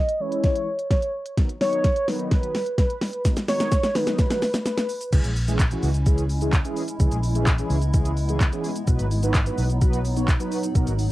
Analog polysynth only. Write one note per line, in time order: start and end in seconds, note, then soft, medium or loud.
0.20 0.67 E3 medium
0.20 0.67 G#3 medium
0.20 0.67 C#4 medium
0.20 0.67 E4 medium
1.37 1.49 D#3 medium
1.37 1.49 F#3 medium
1.37 1.49 B3 medium
1.37 1.49 D#4 medium
1.61 1.84 D#3 medium
1.61 1.84 F#3 medium
1.61 1.84 B3 medium
1.61 1.84 D#4 medium
2.08 2.54 D#3 medium
2.08 2.54 F#3 medium
2.08 2.54 B3 medium
2.08 2.54 D#4 medium
3.25 3.36 D#3 medium
3.25 3.37 F#3 medium
3.25 3.37 B3 medium
3.25 3.37 D#4 medium
3.48 3.72 D#3 medium
3.48 3.72 F#3 medium
3.48 3.72 B3 medium
3.48 3.72 D#4 medium
3.95 4.42 D#3 medium
3.95 4.42 F#3 medium
3.95 4.42 B3 medium
3.95 4.42 D#4 medium
5.13 5.30 E3 medium
5.13 5.30 G#3 medium
5.13 5.30 C#4 medium
5.13 5.30 E4 medium
5.13 5.30 G#4 medium
5.48 5.59 E3 loud
5.48 5.59 G#3 medium
5.48 5.59 C#4 medium
5.48 5.60 E4 medium
5.48 5.60 G#4 loud
5.71 5.89 E3 medium
5.71 5.89 G#3 medium
5.71 5.89 C#4 medium
5.71 5.89 E4 medium
5.71 5.89 F#4 loud
6.06 6.24 E3 medium
6.06 6.24 G#3 medium
6.06 6.24 C#4 medium
6.06 6.24 E4 medium
6.06 6.24 G#4 loud
6.41 6.53 E3 medium
6.41 6.53 G#3 medium
6.41 6.53 C#4 medium
6.41 6.53 E4 medium
6.41 6.53 G#4 loud
6.65 6.82 E3 medium
6.65 6.82 G#3 medium
6.65 6.82 C#4 medium
6.65 6.83 E4 medium
6.65 6.83 G#4 loud
7.00 7.17 E3 medium
7.00 7.17 G#3 medium
7.00 7.18 C#4 medium
7.00 7.18 E4 medium
7.00 7.18 G#4 loud
7.35 7.47 E3 loud
7.35 7.47 G#3 medium
7.35 7.47 C#4 medium
7.35 7.47 E4 medium
7.35 7.47 G#4 loud
7.59 7.76 E3 medium
7.59 7.76 G#3 medium
7.59 7.76 C#4 medium
7.59 7.76 E4 medium
7.59 7.76 G#4 loud
7.94 8.11 E3 loud
7.94 8.11 G#3 medium
7.94 8.11 C#4 medium
7.94 8.11 E4 medium
7.94 8.11 G#4 loud
8.29 8.41 E3 medium
8.29 8.41 G#3 medium
8.29 8.41 C#4 medium
8.29 8.41 E4 medium
8.29 8.41 G#4 loud
8.52 8.70 E3 loud
8.52 8.70 G#3 medium
8.52 8.70 C#4 medium
8.52 8.70 E4 medium
8.52 8.70 G#4 loud
8.88 9.05 F#3 medium
8.88 9.05 B3 medium
8.88 9.05 D#4 medium
8.88 9.05 F#4 medium
8.88 9.05 B4 loud
9.23 9.34 F#3 loud
9.23 9.34 B3 medium
9.23 9.35 D#4 medium
9.23 9.35 F#4 medium
9.23 9.35 B4 loud
9.46 9.64 F#3 medium
9.46 9.64 B3 medium
9.46 9.64 D#4 medium
9.46 9.64 F#4 medium
9.46 9.64 B4 loud
9.81 9.99 F#3 loud
9.81 9.99 B3 medium
9.81 9.99 D#4 medium
9.81 9.99 F#4 medium
9.81 9.99 B4 loud
10.16 10.28 F#3 medium
10.16 10.28 B3 medium
10.16 10.28 D#4 medium
10.16 10.28 F#4 medium
10.16 10.28 C#5 loud
10.40 10.57 F#3 medium
10.40 10.57 B3 medium
10.40 10.57 D#4 medium
10.40 10.57 F#4 medium
10.40 10.57 B4 loud
10.75 10.92 F#3 medium
10.75 10.93 B3 medium
10.75 10.93 D#4 medium
10.75 10.93 F#4 medium
10.75 10.93 A#4 loud